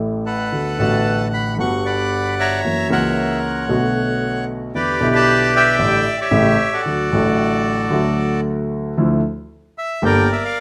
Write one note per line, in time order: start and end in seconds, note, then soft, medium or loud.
0.00 0.47 A1 medium
0.00 0.47 A2 medium
0.00 0.46 E3 medium
0.00 0.46 A3 medium
0.00 0.47 C#4 medium
0.00 0.48 A4 medium
0.26 1.28 A4 medium
0.26 1.28 B4 medium
0.26 0.78 F#5 medium
0.52 0.75 D2 soft
0.52 0.75 D3 soft
0.52 0.74 A3 soft
0.52 0.75 B3 soft
0.52 0.75 F#4 soft
0.77 1.54 A1 medium
0.77 1.54 A2 medium
0.77 1.53 D3 medium
0.77 1.54 A3 medium
0.77 1.55 B3 medium
0.77 1.54 F#5 medium
0.77 1.29 A5 medium
0.82 1.55 F#4 medium
1.34 1.57 B5 medium
1.56 2.58 G1 medium
1.56 2.58 G2 medium
1.56 2.57 D3 medium
1.56 2.58 G3 medium
1.56 2.59 B3 medium
1.56 1.84 F#5 medium
1.60 2.60 F#4 medium
1.60 1.86 C#6 medium
1.85 2.60 D5 medium
1.85 2.60 F#5 medium
1.85 2.35 B5 medium
2.39 2.90 C#5 medium
2.39 3.39 E5 medium
2.39 2.88 A#5 medium
2.63 2.86 F#2 soft
2.63 2.86 E3 soft
2.63 2.86 F#3 soft
2.63 2.85 A#3 soft
2.63 2.86 C#4 soft
2.63 2.86 F#4 soft
2.89 3.65 C#2 medium
2.89 3.65 C#3 medium
2.89 3.64 E3 medium
2.89 3.65 A#3 medium
2.89 3.66 C#4 medium
2.89 3.66 F#4 medium
2.89 3.66 A#4 soft
2.89 4.44 C#5 soft
2.89 4.45 F#5 medium
3.67 4.69 B1 medium
3.67 4.69 B2 medium
3.67 4.68 D3 medium
3.67 4.68 A3 medium
3.67 4.69 B3 medium
3.67 4.69 F#4 medium
4.74 4.96 E2 medium
4.74 4.96 D3 soft
4.74 4.96 E3 soft
4.74 4.96 G3 soft
4.74 4.96 B3 soft
4.74 4.96 E4 soft
4.74 5.75 G4 medium
4.74 5.76 B4 medium
4.74 5.14 D5 medium
4.99 5.75 B1 medium
4.99 5.75 B2 medium
4.99 5.74 D3 medium
4.99 5.75 G3 medium
4.99 5.76 B3 medium
4.99 5.76 E4 medium
5.15 5.54 D5 medium
5.15 5.55 A5 loud
5.55 6.29 D5 medium
5.55 6.20 E5 medium
5.55 6.16 G5 medium
5.79 6.01 A1 medium
5.79 6.01 A2 medium
5.79 6.01 D3 medium
5.79 6.01 G3 medium
5.79 6.01 A3 medium
5.79 6.01 E4 medium
6.21 6.82 G4 medium
6.21 6.82 C#5 medium
6.21 6.74 E5 medium
6.31 6.53 A1 medium
6.31 6.54 A2 medium
6.31 6.53 C#3 medium
6.31 6.53 G3 medium
6.31 6.54 A3 medium
6.31 6.54 E4 medium
6.73 8.41 F#4 medium
6.73 8.41 A4 medium
6.73 8.41 D5 medium
6.85 7.07 D2 medium
6.85 7.07 D3 soft
6.85 7.07 F#3 soft
6.85 7.07 A3 soft
6.85 7.07 F#4 soft
7.11 7.87 A1 medium
7.11 7.87 A2 medium
7.11 7.86 D3 medium
7.11 7.87 F#3 medium
7.11 7.88 A3 medium
7.11 7.88 F#4 medium
7.89 8.92 D2 medium
7.89 8.92 D3 medium
7.89 8.92 F#3 medium
7.89 8.93 A3 medium
7.89 8.93 F#4 medium
8.97 9.20 D2 medium
8.97 9.20 D3 medium
8.97 9.20 F3 medium
8.97 9.20 A3 medium
8.97 9.20 E4 medium
9.78 10.04 E5 medium
10.02 10.25 G1 medium
10.02 10.25 G2 medium
10.02 10.24 D3 medium
10.02 10.25 G3 medium
10.02 10.25 A#3 medium
10.02 10.25 G4 medium
10.02 10.60 A#4 medium
10.02 10.60 D5 medium
10.02 10.28 G5 medium
10.32 10.43 E5 medium
10.45 10.60 F5 medium